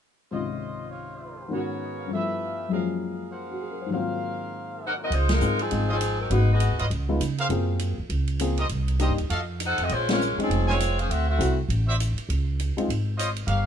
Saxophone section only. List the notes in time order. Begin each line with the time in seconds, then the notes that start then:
4.86 D#4 A#4 C5 F#5
5.03 C4 F#4 A#4 D#5
5.14 G#3 D#4 F4 C5
5.33 G#3 D#4 F4 A#4
5.61 F3 C4 D#4 G#4
5.91 F3 C4 D#4 G#4
6.21 F#3 C4 D#4 A#4
6.31 G#3 D#4 F#4 B4
6.52 B3 F#4 G#4 D#5
9.65 D#4 A4 C5 F#5
9.83 C4 F#4 A4 D#5
9.93 G#3 C#4 F4 C5
10.13 G#3 C#4 F4 A#4
10.42 F3 C4 C#4 G#4
10.70 G#3 C4 F4 C#5
11.00 C#4 G#4 C5 F5
11.10 C4 F#4 A4 E5
11.28 C4 F#4 A4 E5